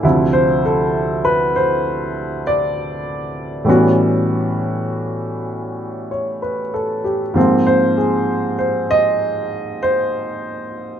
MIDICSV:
0, 0, Header, 1, 2, 480
1, 0, Start_track
1, 0, Tempo, 910470
1, 21, Time_signature, 4, 2, 24, 8
1, 2901, Tempo, 925926
1, 5750, End_track
2, 0, Start_track
2, 0, Title_t, "Upright piano"
2, 0, Program_c, 0, 0
2, 0, Control_c, 0, 64, 127
2, 15, Note_on_c, 0, 38, 58
2, 20, Note_on_c, 0, 48, 54
2, 25, Note_on_c, 0, 53, 50
2, 25, Note_on_c, 0, 64, 63
2, 29, Control_c, 0, 64, 0
2, 123, Control_c, 0, 64, 127
2, 174, Note_on_c, 0, 72, 76
2, 331, Note_off_c, 0, 72, 0
2, 346, Note_on_c, 0, 69, 61
2, 640, Note_off_c, 0, 69, 0
2, 657, Note_on_c, 0, 71, 73
2, 812, Note_off_c, 0, 71, 0
2, 821, Note_on_c, 0, 72, 68
2, 1276, Note_off_c, 0, 72, 0
2, 1302, Note_on_c, 0, 74, 76
2, 1922, Note_on_c, 0, 45, 55
2, 1929, Note_on_c, 0, 52, 54
2, 1930, Note_off_c, 0, 38, 0
2, 1930, Note_on_c, 0, 55, 50
2, 1933, Note_off_c, 0, 48, 0
2, 1935, Note_off_c, 0, 53, 0
2, 1935, Note_off_c, 0, 64, 0
2, 1938, Note_on_c, 0, 59, 49
2, 1940, Control_c, 0, 64, 0
2, 1943, Note_on_c, 0, 61, 52
2, 1948, Note_on_c, 0, 66, 66
2, 2024, Note_off_c, 0, 74, 0
2, 2033, Control_c, 0, 64, 127
2, 3217, Note_on_c, 0, 73, 44
2, 3378, Note_on_c, 0, 71, 42
2, 3469, Note_off_c, 0, 73, 0
2, 3542, Note_on_c, 0, 69, 51
2, 3686, Note_off_c, 0, 71, 0
2, 3699, Note_on_c, 0, 67, 52
2, 3793, Note_off_c, 0, 69, 0
2, 3853, Note_on_c, 0, 44, 57
2, 3859, Note_off_c, 0, 45, 0
2, 3860, Note_on_c, 0, 53, 49
2, 3861, Note_on_c, 0, 58, 48
2, 3862, Note_off_c, 0, 52, 0
2, 3863, Note_off_c, 0, 55, 0
2, 3867, Note_off_c, 0, 59, 0
2, 3867, Note_on_c, 0, 60, 64
2, 3869, Note_off_c, 0, 61, 0
2, 3871, Control_c, 0, 64, 0
2, 3872, Note_off_c, 0, 66, 0
2, 3952, Note_off_c, 0, 67, 0
2, 3967, Control_c, 0, 64, 127
2, 4022, Note_on_c, 0, 72, 71
2, 4180, Note_off_c, 0, 72, 0
2, 4182, Note_on_c, 0, 68, 52
2, 4484, Note_off_c, 0, 68, 0
2, 4499, Note_on_c, 0, 72, 60
2, 4658, Note_off_c, 0, 72, 0
2, 4665, Note_on_c, 0, 75, 90
2, 5124, Note_off_c, 0, 75, 0
2, 5142, Note_on_c, 0, 72, 73
2, 5750, Note_off_c, 0, 44, 0
2, 5750, Note_off_c, 0, 53, 0
2, 5750, Note_off_c, 0, 58, 0
2, 5750, Note_off_c, 0, 60, 0
2, 5750, Note_off_c, 0, 72, 0
2, 5750, End_track
0, 0, End_of_file